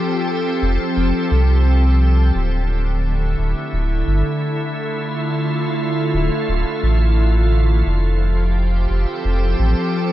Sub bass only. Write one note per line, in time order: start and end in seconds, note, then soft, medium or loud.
0.62 0.78 F1 medium
0.97 1.12 F1 medium
1.31 2.32 C2 loud
2.35 3.35 D1 loud
3.38 3.54 D1 medium
3.73 4.03 D1 medium
4.07 4.23 G1 medium
6.14 6.30 D1 medium
6.48 6.64 D1 medium
6.83 7.83 A1 medium
7.86 8.87 F1 loud
8.90 9.06 F1 medium
9.25 9.55 F1 medium
9.59 9.75 A1 medium